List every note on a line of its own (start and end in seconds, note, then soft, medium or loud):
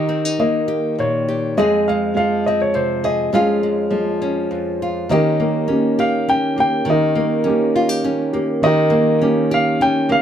0.00 1.57 D#3 medium
0.00 0.66 G4 soft
0.00 0.67 G4 medium
0.00 0.36 D#5 medium
0.09 0.25 C4 soft
0.25 1.57 D#4 soft
0.39 1.57 A#3 soft
0.39 1.54 A#3 medium
0.39 0.95 D#5 medium
0.68 1.27 G4 soft
0.99 1.57 A#2 medium
0.99 1.60 C#5 medium
1.28 1.54 G4 medium
1.57 3.31 F2 medium
1.57 2.13 G#3 medium
1.57 1.89 G#3 soft
1.57 2.46 C4 soft
1.57 3.03 G#4 medium
1.57 2.43 G#4 medium
1.57 1.88 D#5 medium
1.88 3.32 G#3 soft
1.88 2.15 F5 medium
2.15 3.30 F3 medium
2.15 3.32 G#3 soft
2.15 2.44 F5 medium
2.46 3.33 C4 soft
2.46 2.60 D#5 medium
2.62 2.76 C#5 medium
2.74 3.29 C3 medium
2.74 3.02 C5 medium
3.04 3.30 G#4 medium
3.04 3.32 D#5 medium
3.33 4.50 F2 medium
3.33 3.90 G#3 medium
3.33 3.62 G#3 soft
3.33 4.20 C#4 medium
3.33 4.81 F4 medium
3.33 4.49 G#4 soft
3.33 4.48 F5 medium
3.63 5.10 G#3 soft
3.91 5.07 F3 medium
3.91 5.16 G#3 soft
4.22 5.07 C#4 soft
4.51 5.11 F2 soft
4.82 5.11 F4 soft
5.09 6.85 D#3 medium
5.09 5.39 A#3 soft
5.09 5.67 C#4 soft
5.09 5.98 G4 medium
5.09 6.02 D#5 medium
5.13 5.97 G4 soft
5.13 5.97 A#4 medium
5.40 6.57 A#3 medium
5.40 5.67 A#3 medium
5.68 7.15 A#3 soft
5.68 6.28 C#4 medium
5.68 6.27 C#4 soft
5.68 6.55 G4 medium
5.99 7.47 G4 medium
5.99 6.30 F5 medium
6.28 7.45 C#4 soft
6.28 6.88 C#4 medium
6.28 6.57 G5 medium
6.56 7.15 A#3 medium
6.56 7.45 G4 medium
6.56 6.87 G5 medium
6.85 8.63 D#3 medium
6.85 8.60 D#3 medium
6.90 8.02 G4 soft
6.90 8.03 A#4 soft
6.90 8.02 D#5 medium
7.15 8.33 A#3 medium
7.15 7.44 A#3 medium
7.44 8.91 A#3 medium
7.44 8.04 C#4 medium
7.44 8.32 G4 medium
7.76 7.89 F4 medium
7.89 8.63 G4 medium
8.04 8.66 C#4 medium
8.04 9.21 C#4 soft
8.33 8.90 A#3 medium
8.33 9.21 G4 medium
8.62 10.22 D#3 medium
8.62 9.18 D#5 medium
8.66 9.49 G4 medium
8.66 9.49 A#4 medium
8.90 10.09 A#3 medium
8.90 9.20 A#3 medium
9.22 10.22 A#3 medium
9.22 9.80 C#4 medium
9.22 9.79 C#4 medium
9.22 10.07 G4 medium
9.51 10.22 G4 medium
9.51 9.80 F5 medium
9.80 10.22 C#4 medium
9.80 10.09 G5 medium
10.09 10.22 A#3 medium
10.09 10.22 G4 medium
10.09 10.22 F5 medium